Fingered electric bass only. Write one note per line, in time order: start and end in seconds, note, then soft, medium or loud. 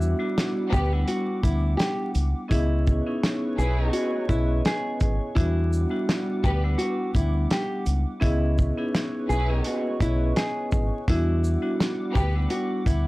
0.00 0.13 E2 loud
0.73 1.03 D2 medium
1.44 1.74 D2 medium
2.15 2.33 C#2 medium
2.51 2.99 C#2 loud
3.58 3.89 B1 medium
4.29 4.60 B1 loud
5.01 5.18 G#1 medium
5.37 5.85 E2 loud
6.44 6.74 D2 medium
7.15 7.46 D2 medium
7.87 8.04 C#2 medium
8.22 8.70 C#2 loud
9.30 9.60 B1 medium
10.01 10.31 B1 loud
10.72 10.90 G#1 medium
11.08 11.56 E2 loud
12.15 12.46 D2 medium
12.86 13.07 D2 medium